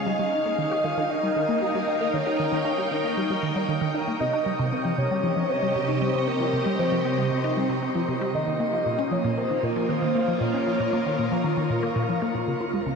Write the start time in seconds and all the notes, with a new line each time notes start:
Already playing: C#4 D#5 F5
0.07 G3 D#4 D#5
0.19 G3
0.33 D#4
0.45 A#3 A#4
0.55 D#3 G5
0.71 G4
0.84 D#3 F5
0.97 D#3
1.10 D#4 D#5
1.23 G3
1.36 D#3
1.49 A#3
1.62 G3
1.75 G3
1.87 D#4
2.01 A#3
2.14 D#3 C#5
2.27 G4
2.39 D#3
2.52 D#3
2.65 D#4
2.78 G3
2.92 D#3
3.04 A#3
3.17 G3
3.30 G3
3.43 D#3
3.56 G3
3.68 D#3
3.81 D#3
3.95 D#4
4.08 A#3
4.20 C3 D#5
4.33 D#4
4.46 G3
4.54 G4
4.59 C3
4.72 C4
4.85 F3
4.98 C3 C#5
5.02 D#5
5.11 G3
5.23 F3
5.36 F3
5.49 C4
5.63 G3
5.75 C3
5.89 D#4
6.02 G3 C5
6.15 C3
6.28 C4 A#4
6.40 F3
6.53 C3
6.66 G3
6.79 F3 C5
6.92 F3
7.05 C4
7.18 G3
7.31 C3
7.44 D#4
7.57 G3
7.69 C3
7.82 C4
7.95 F3
8.09 C3
8.21 G3
8.34 D#3 A#3 D#5
8.47 D#3 F4
8.60 A#3
8.73 F3
8.86 A#2
8.99 C#4
9.11 F3 C#5
9.22 A#2 A#4
9.38 A#3 C5
9.50 D#3
9.63 A#2 A#4
9.76 F3
9.89 D#3 C5
10.02 D#3
10.15 A#3
10.28 F3
10.41 A#2 C#5
10.54 C#4
10.67 F3
10.80 A#2
10.93 A#3
11.06 D#3
11.19 A#2
11.32 F3
11.44 D#3
11.57 D#3
11.70 A#2
11.83 A#3
11.96 A#2
12.09 F3
12.22 A#3
12.35 A#2
12.48 C#2 C#3 C#4
12.61 F4
12.70 G#3 F5
12.86 C#3 G#4